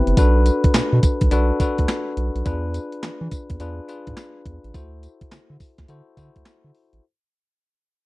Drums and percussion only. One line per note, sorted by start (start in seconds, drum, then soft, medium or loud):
0.07 closed hi-hat soft
0.17 kick loud
0.17 closed hi-hat medium
0.17 tambourine medium
0.46 closed hi-hat medium
0.46 tambourine medium
0.64 kick loud
0.64 closed hi-hat medium
0.74 snare loud
0.74 clap medium
0.74 closed hi-hat medium
0.74 tambourine loud
1.03 kick loud
1.03 closed hi-hat medium
1.03 tambourine medium
1.21 kick loud
1.21 closed hi-hat medium
1.31 closed hi-hat medium
1.31 tambourine medium
1.60 kick loud
1.60 closed hi-hat medium
1.60 tambourine medium
1.78 kick loud
1.78 closed hi-hat medium
1.88 snare loud
1.88 clap loud
1.88 closed hi-hat medium
1.88 tambourine loud
2.17 closed hi-hat medium
2.36 closed hi-hat soft
2.46 kick loud
2.46 closed hi-hat medium
2.46 tambourine medium
2.74 closed hi-hat medium
2.74 tambourine medium
2.92 closed hi-hat medium
3.03 snare loud
3.03 clap medium
3.03 closed hi-hat medium
3.03 tambourine medium
3.31 kick loud
3.31 closed hi-hat medium
3.31 tambourine medium
3.50 kick loud
3.50 closed hi-hat medium
3.60 closed hi-hat medium
3.60 tambourine medium
3.89 closed hi-hat medium
3.89 tambourine medium
4.07 kick loud
4.07 closed hi-hat medium
4.17 snare loud
4.17 clap loud
4.17 closed hi-hat medium
4.17 tambourine loud
4.46 kick loud
4.46 closed hi-hat medium
4.64 closed hi-hat soft
4.74 kick loud
4.74 closed hi-hat medium
4.74 tambourine medium
5.03 closed hi-hat medium
5.03 tambourine medium
5.21 kick loud
5.21 closed hi-hat medium
5.31 snare loud
5.31 clap medium
5.31 closed hi-hat medium
5.31 tambourine loud
5.60 kick loud
5.60 open hi-hat medium
5.60 tambourine medium
5.78 kick medium
5.78 snare medium
5.78 closed hi-hat medium
5.88 closed hi-hat medium
5.88 tambourine medium
6.17 kick medium
6.17 closed hi-hat medium
6.17 tambourine medium
6.36 kick medium
6.36 closed hi-hat soft
6.45 snare loud
6.45 clap loud
6.45 closed hi-hat medium
6.45 tambourine loud
6.75 open hi-hat medium
6.93 closed hi-hat soft